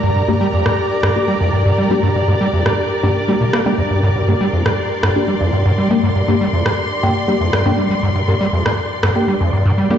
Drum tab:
SD |-----r--r-------|-----r------r---|-----r--r-------|-----r------r---|

SD |-----r--r-------|